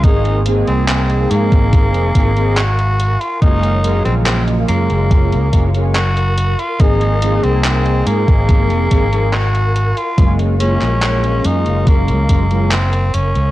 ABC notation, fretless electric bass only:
X:1
M:4/4
L:1/16
Q:1/4=71
K:Abmix
V:1 name="Fretless electric bass" clef=bass
A,,,3 C,,3 A,, A,,,2 F,,, A,,,4- A,,, z | G,,,3 B,,,3 G,, G,,,2 D,, G,,,4- G,,, z | A,,,3 C,,3 A,, A,,,2 F,,, A,,,4- A,,, z | G,,,3 B,,,3 G,, G,,,2 D,, G,,,4 G,,, D,, |]